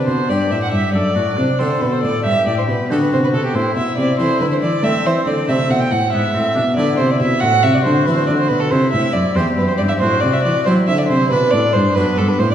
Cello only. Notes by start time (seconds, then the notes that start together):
0.08 B2
0.29 G2
0.51 A2
0.72 G2
0.94 F#2
1.16 A2
1.38 C3
1.60 D3
1.82 B2
2.03 A2
2.25 G2
2.47 A2
2.68 B2
2.90 D3
3.12 C3
3.33 B2
3.54 A2
3.75 B2
3.97 C3
4.19 E3
4.40 D3
4.61 E3
4.83 A3
5.05 E3
5.26 D3
5.48 C3
5.70 B2
5.91 A2
6.13 G#2
6.35 A2
6.56 B2
6.77 D3
6.99 C3
7.20 B2
7.42 A2
7.63 C3
7.85 D3
8.07 E3
8.28 D3
8.50 B2
8.72 C3
8.93 A2
9.14 F#2
9.36 E2
9.58 F#2
9.80 G2
10.01 A2
10.23 C3
10.45 E3
10.66 F#3
10.88 D3
11.10 C3
11.31 B2
11.53 A2
11.75 G2
11.96 F#2
12.17 G2
12.39 A2